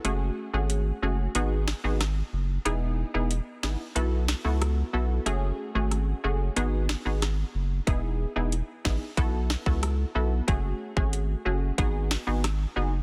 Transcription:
<<
  \new Staff \with { instrumentName = "Synth stab" } { \time 4/4 \key fis \dorian \tempo 4 = 92 <a cis' fis' gis'>8. <a cis' fis' gis'>8. <a cis' fis' gis'>8 <b dis' fis' gis'>8. <b dis' fis' gis'>16 r4 | <b dis' e' gis'>8. <b dis' e' gis'>16 r8 <b dis' e' gis'>16 r16 <b e' fis' a'>8. <b e' fis' a'>8. <b e' fis' a'>8 | <a cis' fis' gis'>8. <a cis' fis' gis'>8. <a cis' fis' gis'>8 <b dis' fis' gis'>8. <b dis' fis' gis'>16 r4 | <b dis' e' gis'>8. <b dis' e' gis'>16 r8 <b dis' e' gis'>16 r16 <b e' fis' a'>8. <b e' fis' a'>8. <b e' fis' a'>8 |
<a cis' fis' gis'>8. <a cis' fis' gis'>8. <a cis' fis' gis'>8 <b dis' fis' gis'>8. <b dis' fis' gis'>16 r8 <b dis' fis' gis'>16 r16 | }
  \new Staff \with { instrumentName = "Sub bass" } { \clef bass \time 4/4 \key fis \dorian fis,,8 r16 gis,,8. fis,,8 gis,,8. gis,,8. fis,,8 | e,,8. e,,8 r16 gis,,16 r16 b,,8. cis,8. b,,8 | fis,,8 r16 gis,,8. fis,,8 gis,,8. gis,,8. fis,,8 | e,,8. e,,8 r16 gis,,16 r16 b,,8. cis,8. b,,8 |
fis,,8 r16 gis,,8. fis,,8 gis,,8. gis,,8. fis,,8 | }
  \new DrumStaff \with { instrumentName = "Drums" } \drummode { \time 4/4 hh4 hh4 hh8 <ss sn>8 <hh ss sn>4 | hh4 hh8 <ss sn>8 hh8 <ss sn>8 <hh ss>4 | hh4 <hh ss>4 hh8 <ss sn>8 <hh ss sn>4 | <hh bd>4 hh8 <bd ss sn>8 <hh bd>8 <ss sn>16 bd16 <hh ss>4 |
<hh bd>8. bd16 hh4 <hh bd>8 <ss sn>8 <hh ss sn>4 | }
>>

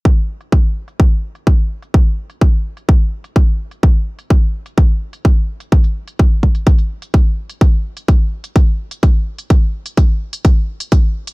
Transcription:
\new DrumStaff \with { instrumentName = "Drums" } \drummode { \time 4/4 \tempo 4 = 127 bd8. hh16 bd8. hh16 bd8. hh16 bd8. hh16 | bd8. hh16 bd8. hh16 bd8. hh16 <hh bd>8. hh16 | <hh bd>8. hh16 <hh bd>8. hh16 <hh bd>8. hh16 <hh bd>8. hh16 | <hh bd>16 hh8 hh16 <hh bd>8 bd16 hh16 <hh bd>16 hh8 hh16 <hh bd>8. hh16 |
<hh bd>8. hh16 <hh bd>8. hh16 <hh bd>8. hh16 <hh bd>8. hh16 | <hh bd>8. hh16 <hh bd>8. hh16 <hh bd>8. hh16 <hh bd>8. hh16 | }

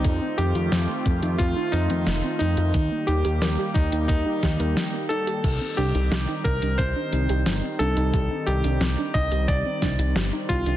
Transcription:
<<
  \new Staff \with { instrumentName = "Electric grand piano" } { \time 4/4 \key c \dorian \tempo 4 = 89 ees'8 g'4. f'8 ees'4 ees'8~ | ees'8 g'4 ees'8 ees'4. a'8~ | a'8 g'4 bes'8 c''4. a'8~ | a'8 g'4 ees''8 d''4. f'8 | }
  \new Staff \with { instrumentName = "Synth arpeggio sound" } { \time 4/4 \key c \dorian a16 c'16 ees'16 f'16 r16 a16 c'16 ees'16 f'16 ees'16 r16 c'16 a16 c'16 ees'16 f'16 | r16 bes16 ees'16 g'16 bes'16 g'16 r16 ees'16 bes16 ees'16 g'16 bes'16 r16 bes16 ees'16 g'16 | r16 c'16 d'16 ees'16 g'16 ees'16 r16 d'16 c'16 d'16 ees'16 g'16 r16 c'16 d'16 ees'16 | g'16 ees'16 r16 d'16 c'16 d'16 ees'16 g'16 r16 c'16 d'16 ees'16 g'16 ees'16 r16 d'16 | }
  \new Staff \with { instrumentName = "Analog synth pad" } { \time 4/4 \key c \dorian << { <a c' f'>1 | <g bes g'>1 | <g c' ees'>1~ | <g c' ees'>1 | } \\ { ees1~ | ees1 | ees1~ | ees1 | } >> }
  \new Staff \with { instrumentName = "Analog synth bass" } { \clef bass \time 4/4 \key c \dorian f,16 r16 f,16 f,16 f,16 r16 f,16 f,16 f,16 r16 f,16 f,16 f,,16 r16 f,16 f,16 | ees,16 r16 ees,16 ees,16 ees,16 r16 ees,16 ees,16 ees,16 r16 ees,16 ees,16 r4 | c,16 r16 c,16 c,16 c,16 r16 c,16 c,16 c,16 r16 c,16 c,16 g,,16 r16 c,16 c,16 | c,16 r16 c,16 c,16 c,16 r16 c,16 c,16 c,16 r16 c,16 c,16 g,,16 r16 c,16 c,16 | }
  \new DrumStaff \with { instrumentName = "Drums" } \drummode { \time 4/4 <hh bd>8 hh16 hh16 <hh sn>8 <hh bd>16 hh16 <hh bd>8 hh16 hh16 <hh sn>8 hh16 hh16 | <hh bd>8 hh16 hh16 <hh sn>8 <hh bd>16 hh16 <hh bd>8 <hh bd sn>16 hh16 <hh sn>8 hh16 hh16 | <cymc hh bd>8 hh16 hh16 <hh sn>8 <hh bd>16 hh16 <hh bd>8 hh16 hh16 <hh sn>8 hh16 hh16 | <hh bd>8 hh16 hh16 <hh sn>8 <hh bd>16 hh16 <hh bd>8 <hh bd sn>16 hh16 <hh sn>8 <hh bd>16 hh16 | }
>>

